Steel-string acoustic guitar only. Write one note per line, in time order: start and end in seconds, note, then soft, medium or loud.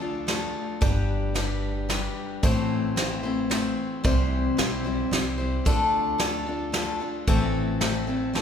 0.00 0.27 D4 soft
0.00 0.27 F4 soft
0.00 0.27 A4 medium
0.27 0.80 A3 medium
0.27 0.80 D4 medium
0.27 0.82 F4 medium
0.27 0.82 A4 medium
0.81 1.33 G3 medium
0.81 1.34 D4 medium
0.81 1.35 G4 medium
0.81 1.36 B4 medium
1.34 1.88 G3 medium
1.34 1.88 D4 medium
1.34 1.89 G4 medium
1.34 1.90 B4 medium
1.89 2.43 G3 medium
1.89 2.43 D4 medium
1.89 2.44 G4 medium
1.89 2.44 B4 medium
2.43 2.97 A2 medium
2.43 4.04 E3 medium
2.43 2.95 A3 medium
2.43 2.97 C4 medium
2.43 2.97 E4 medium
2.43 2.98 C5 medium
2.96 3.23 A3 medium
2.96 3.24 C4 medium
2.96 3.23 E4 medium
2.96 3.22 C5 medium
3.23 3.48 A3 soft
3.23 3.49 C4 soft
3.23 3.50 E4 soft
3.23 3.50 C5 medium
3.50 4.04 A3 medium
3.50 4.03 C4 medium
3.50 4.04 E4 medium
3.50 4.04 C5 medium
4.04 4.58 C3 medium
4.04 4.58 E3 medium
4.04 4.56 G3 medium
4.04 4.57 C4 medium
4.04 4.58 E4 medium
4.04 4.58 C5 loud
4.57 4.84 G3 medium
4.57 4.85 C4 medium
4.57 4.85 E4 medium
4.57 4.83 C5 medium
4.84 5.10 G3 soft
4.84 5.11 C4 soft
4.84 5.12 E4 soft
4.84 5.12 C5 medium
5.11 5.38 G3 medium
5.11 5.39 C4 medium
5.11 5.38 E4 medium
5.11 5.37 C5 medium
5.38 5.65 G3 soft
5.38 5.66 C4 soft
5.38 5.66 E4 soft
5.38 5.65 C5 medium
5.65 6.19 D3 medium
5.65 6.18 A3 medium
5.65 6.18 D4 medium
5.65 6.19 F4 medium
5.65 6.21 A4 loud
6.18 6.46 A3 medium
6.18 6.46 D4 medium
6.18 6.46 F4 medium
6.18 6.45 A4 medium
6.46 6.72 D4 soft
6.46 6.73 F4 medium
6.46 6.73 A4 medium
6.72 7.00 A3 medium
6.72 7.00 D4 medium
6.72 7.00 F4 medium
6.72 6.99 A4 medium
7.00 7.28 D4 soft
7.00 7.28 F4 soft
7.00 7.27 A4 soft
7.27 7.81 A2 medium
7.27 7.81 E3 medium
7.27 7.79 A3 medium
7.27 7.80 C4 medium
7.27 7.81 E4 loud
7.27 7.81 A4 medium
7.81 8.08 A3 medium
7.81 8.08 C4 medium
7.81 8.07 E4 medium
7.81 8.06 A4 medium
8.07 8.32 A3 soft
8.07 8.33 C4 soft
8.07 8.34 E4 soft
8.07 8.34 A4 medium
8.33 8.42 A3 medium
8.33 8.42 C4 medium
8.33 8.42 E4 medium
8.33 8.42 A4 medium